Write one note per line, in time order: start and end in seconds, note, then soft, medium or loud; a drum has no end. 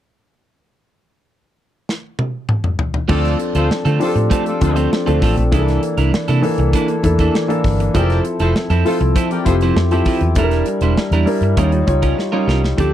1.89 snare medium
2.19 high tom medium
2.49 mid tom medium
2.64 mid tom medium
2.79 floor tom medium
2.94 floor tom medium
3.08 3.34 D2 loud
3.08 3.91 F3 medium
3.08 3.37 A3 medium
3.08 3.37 C4 medium
3.08 3.92 C4 medium
3.08 3.92 D4 medium
3.08 3.37 F4 medium
3.08 3.34 F4 medium
3.08 3.37 A4 medium
3.08 3.34 A4 medium
3.08 3.92 A4 medium
3.08 3.34 D5 loud
3.08 kick loud
3.08 crash medium
3.25 snare soft
3.25 closed hi-hat soft
3.40 muted clean electric guitar stroke soft
3.40 closed hi-hat medium
3.55 3.67 D2 medium
3.55 3.69 A3 medium
3.55 3.70 C4 medium
3.55 3.70 F4 medium
3.55 3.68 F4 medium
3.55 3.70 A4 medium
3.55 3.68 A4 medium
3.55 3.68 C5 medium
3.55 closed hi-hat medium
3.71 snare medium
3.85 3.98 D3 medium
3.85 3.99 A3 medium
3.85 4.00 C4 medium
3.85 4.00 F4 medium
3.85 4.00 A4 medium
3.85 closed hi-hat soft
3.99 4.55 F3 medium
3.99 4.55 C4 medium
3.99 4.55 D4 medium
3.99 4.13 F4 medium
3.99 4.07 G4 medium
3.99 4.13 A4 medium
3.99 4.14 C5 medium
3.99 muted clean electric guitar stroke soft
3.99 open hi-hat medium
4.07 4.59 A4 medium
4.15 4.28 A2 medium
4.15 muted clean electric guitar stroke soft
4.15 closed hi-hat soft
4.30 4.51 A3 medium
4.30 4.45 C4 medium
4.30 4.45 F4 medium
4.30 4.45 A4 medium
4.30 kick medium
4.30 closed hi-hat medium
4.46 4.59 F4 medium
4.46 4.59 A4 medium
4.46 4.59 D5 medium
4.46 muted clean electric guitar stroke soft
4.46 closed hi-hat soft
4.61 4.87 D2 medium
4.61 5.02 F3 medium
4.61 5.03 C4 medium
4.61 5.03 D4 medium
4.61 4.74 F4 medium
4.61 5.03 A4 medium
4.61 4.74 A4 medium
4.61 4.74 C5 medium
4.61 muted clean electric guitar stroke soft
4.61 kick medium
4.61 closed hi-hat medium
4.76 4.90 A3 soft
4.76 4.91 C4 medium
4.76 4.91 F4 medium
4.76 4.92 C5 medium
4.76 closed hi-hat soft
4.92 muted clean electric guitar stroke soft
4.92 snare loud
5.06 5.20 D2 medium
5.06 5.48 F3 medium
5.06 5.21 A3 soft
5.06 5.48 C4 medium
5.06 5.21 C4 soft
5.06 5.48 D4 medium
5.06 5.22 F4 soft
5.06 5.22 A4 medium
5.06 5.48 A4 medium
5.06 closed hi-hat soft
5.22 5.34 A1 medium
5.22 5.43 A3 medium
5.22 5.37 C4 medium
5.22 5.36 F4 medium
5.22 5.36 A4 medium
5.22 kick medium
5.22 snare soft
5.22 open hi-hat medium
5.37 5.50 A#1 medium
5.37 muted clean electric guitar stroke soft
5.37 closed hi-hat soft
5.51 5.77 C2 medium
5.51 6.34 E3 medium
5.51 5.80 A#3 medium
5.51 6.35 A#3 medium
5.51 6.35 D4 medium
5.51 5.81 D4 medium
5.51 5.81 E4 medium
5.51 5.59 G#4 medium
5.51 5.81 A4 medium
5.51 kick loud
5.51 closed hi-hat medium
5.59 6.38 A4 medium
5.68 snare soft
5.68 closed hi-hat soft
5.82 muted clean electric guitar stroke soft
5.82 closed hi-hat medium
5.98 6.10 C2 medium
5.98 6.12 A#3 soft
5.98 6.12 D4 medium
5.98 6.13 E4 medium
5.98 6.14 A#4 medium
5.98 closed hi-hat medium
6.13 muted clean electric guitar stroke soft
6.13 muted fingered electric bass stroke soft
6.13 snare loud
6.28 6.41 C3 medium
6.28 6.43 A#3 medium
6.28 6.43 D4 medium
6.28 6.43 E4 medium
6.28 6.43 A4 medium
6.28 closed hi-hat medium
6.42 6.98 E3 medium
6.42 6.98 A#3 medium
6.42 6.98 D4 medium
6.42 6.98 A4 medium
6.42 muted clean electric guitar stroke soft
6.42 open hi-hat medium
6.58 6.71 C2 medium
6.58 muted clean electric guitar stroke soft
6.58 closed hi-hat soft
6.73 6.95 A#3 medium
6.73 6.89 D4 medium
6.73 6.89 E4 medium
6.73 6.88 A4 medium
6.73 kick medium
6.73 closed hi-hat loud
6.88 muted clean electric guitar stroke soft
6.88 closed hi-hat soft
7.03 7.29 E2 medium
7.03 7.45 E3 medium
7.03 7.45 A#3 medium
7.03 7.45 D4 medium
7.03 7.45 A4 medium
7.03 muted clean electric guitar stroke soft
7.03 kick medium
7.03 closed hi-hat medium
7.19 7.33 A#3 soft
7.19 7.34 D4 medium
7.19 7.34 E4 medium
7.19 7.34 A4 medium
7.19 kick medium
7.19 closed hi-hat soft
7.35 muted clean electric guitar stroke soft
7.35 snare loud
7.48 7.90 E3 medium
7.48 7.90 A#3 medium
7.48 7.90 D4 medium
7.48 7.90 A4 medium
7.48 muted clean electric guitar stroke soft
7.48 closed hi-hat soft
7.64 7.89 G1 medium
7.64 kick medium
7.64 snare soft
7.64 open hi-hat medium
7.80 muted clean electric guitar stroke soft
7.80 closed hi-hat medium
7.94 8.19 F1 loud
7.94 8.77 F3 medium
7.94 8.23 F3 medium
7.94 8.77 C4 medium
7.94 8.23 C4 medium
7.94 8.77 E4 medium
7.94 8.23 E4 medium
7.94 8.19 G4 loud
7.94 8.01 G#4 medium
7.94 8.23 A4 medium
7.94 8.19 A#4 medium
7.94 8.19 D5 loud
7.94 kick loud
7.94 closed hi-hat medium
8.02 8.80 A4 medium
8.10 snare soft
8.10 closed hi-hat soft
8.25 muted clean electric guitar stroke soft
8.25 closed hi-hat medium
8.39 8.52 F1 medium
8.39 8.53 F3 medium
8.39 8.54 C4 medium
8.39 8.54 E4 medium
8.39 8.53 F4 medium
8.39 8.55 A4 medium
8.39 8.52 A4 medium
8.39 8.53 C5 medium
8.39 closed hi-hat soft
8.54 muted clean electric guitar stroke soft
8.54 snare loud
8.70 8.83 F2 medium
8.70 8.85 F3 medium
8.70 8.85 C4 medium
8.70 8.85 E4 medium
8.70 8.86 A4 medium
8.70 closed hi-hat medium
8.85 9.40 F3 medium
8.85 9.40 C4 medium
8.85 9.40 E4 medium
8.85 8.98 F4 medium
8.85 8.98 A4 medium
8.85 9.41 A4 medium
8.85 8.98 C5 medium
8.85 muted clean electric guitar stroke soft
8.85 open hi-hat medium
9.00 9.13 C2 medium
9.00 muted clean electric guitar stroke soft
9.00 closed hi-hat soft
9.16 9.36 F3 medium
9.16 9.31 C4 medium
9.16 9.31 E4 medium
9.16 9.30 A4 medium
9.16 kick medium
9.16 closed hi-hat loud
9.30 9.43 G4 medium
9.30 9.43 A#4 medium
9.30 9.43 D5 medium
9.30 muted clean electric guitar stroke soft
9.30 closed hi-hat soft
9.45 9.71 F1 medium
9.45 9.86 F3 medium
9.45 9.87 C4 medium
9.45 9.87 E4 medium
9.45 9.54 F4 medium
9.45 9.87 G4 medium
9.45 9.54 A4 medium
9.45 9.54 C5 medium
9.45 muted clean electric guitar stroke soft
9.45 kick medium
9.45 closed hi-hat medium
9.61 9.76 F3 medium
9.61 9.77 C4 medium
9.61 9.77 E4 medium
9.61 9.78 C5 medium
9.61 closed hi-hat soft
9.76 10.01 F2 loud
9.76 muted clean electric guitar stroke soft
9.76 snare loud
9.91 10.32 F3 medium
9.91 10.06 F3 soft
9.91 10.32 C4 medium
9.91 10.06 C4 medium
9.91 10.33 E4 medium
9.91 10.06 E4 medium
9.91 10.33 G4 medium
9.91 10.07 A4 medium
9.91 closed hi-hat soft
10.05 10.27 F3 medium
10.05 10.22 C4 medium
10.05 10.22 E4 medium
10.05 10.21 A4 medium
10.05 kick medium
10.05 open hi-hat medium
10.21 10.34 E2 medium
10.21 muted clean electric guitar stroke soft
10.21 closed hi-hat medium
10.35 10.61 E1 loud
10.35 11.18 G3 medium
10.35 10.65 G3 medium
10.35 11.19 D4 medium
10.35 10.65 D4 medium
10.35 11.19 E4 medium
10.35 10.65 E4 medium
10.35 10.43 A4 medium
10.35 10.66 A#4 medium
10.35 kick loud
10.35 closed hi-hat medium
10.43 11.22 A#4 medium
10.51 snare soft
10.51 closed hi-hat soft
10.66 muted clean electric guitar stroke soft
10.66 closed hi-hat medium
10.81 10.94 E1 medium
10.81 10.97 G3 medium
10.81 10.97 D4 medium
10.81 10.97 E4 medium
10.81 10.98 C5 medium
10.81 closed hi-hat medium
10.97 muted fingered electric bass stroke soft
10.97 muted clean electric guitar stroke soft
10.97 snare loud
11.11 11.24 E2 medium
11.11 11.27 G3 medium
11.11 11.27 D4 medium
11.11 11.28 E4 medium
11.11 11.28 A#4 medium
11.11 closed hi-hat medium
11.26 11.56 G3 medium
11.26 11.57 D4 medium
11.26 11.57 E4 medium
11.26 11.57 A#4 medium
11.26 muted clean electric guitar stroke soft
11.26 open hi-hat medium
11.41 11.54 G2 medium
11.41 muted clean electric guitar stroke medium
11.41 closed hi-hat soft
11.57 11.82 D#2 medium
11.57 11.85 G3 medium
11.57 11.78 G3 medium
11.57 11.73 C#4 medium
11.57 11.85 D#4 medium
11.57 11.85 F4 medium
11.57 11.72 F4 medium
11.57 11.72 A#4 medium
11.57 11.85 C#5 medium
11.57 kick medium
11.57 closed hi-hat medium
11.72 muted clean electric guitar stroke soft
11.72 closed hi-hat soft
11.87 12.12 C#2 medium
11.87 12.28 G3 medium
11.87 12.28 D#4 medium
11.87 12.29 F4 medium
11.87 12.29 C#5 medium
11.87 muted clean electric guitar stroke soft
11.87 kick medium
11.87 closed hi-hat medium
12.02 12.17 G3 soft
12.02 12.17 C#4 medium
12.02 12.17 F4 medium
12.02 12.18 A#4 medium
12.02 kick medium
12.02 closed hi-hat medium
12.18 muted clean electric guitar stroke soft
12.18 snare medium
12.32 12.74 G3 medium
12.32 12.46 G3 medium
12.32 12.47 C#4 medium
12.32 12.74 D#4 medium
12.32 12.47 F4 medium
12.32 12.74 F4 medium
12.32 12.47 A#4 medium
12.32 12.74 C#5 medium
12.47 12.72 C2 medium
12.47 12.64 G3 medium
12.47 12.63 C#4 medium
12.47 12.63 F4 medium
12.47 12.62 A#4 medium
12.47 snare medium
12.63 muted clean electric guitar stroke soft
12.63 snare medium
12.77 12.94 D2 medium
12.77 12.94 F3 medium
12.77 12.94 C4 medium
12.77 12.93 C4 medium
12.77 12.94 D4 medium
12.77 12.93 D4 medium
12.77 12.94 G4 medium
12.77 12.94 A4 medium
12.77 12.92 A4 medium
12.77 kick loud
12.77 closed hi-hat medium